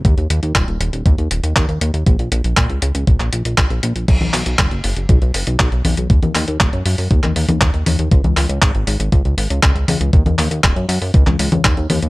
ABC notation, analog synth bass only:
X:1
M:4/4
L:1/16
Q:1/4=119
K:Ebm
V:1 name="Analog synth bass" clef=bass
E,, E,, E,, E,, E,,, E,,, E,,, E,,, E,, E,, E,,, E,, E,, E,, E,, E,, | B,,, B,,, B,,, B,,, B,, D,, D,, D,, B,,, B,,, B,,, B,,, B,,, B,,, B,,, B,,, | =B,,, B,,, B,,, B,,, ^F,,, F,,, F,,, F,,, B,,, B,,, F,,, B,,, B,,, B,,, B,,, B,,, | E,, E,, E,, E,, E,,, G,, G,, G,, E,, E,, E,, E,, E,, E,, E,, E,, |
D,, D,, D,, D,, A,,, A,,, A,,, A,,, D,, D,, A,,, D,, D,, D,, D,, D,, | E,, E,, E,, E,, E,,, G,, G,, G,, D,, D,, D,, D,, E,, E,, E,, E,, |]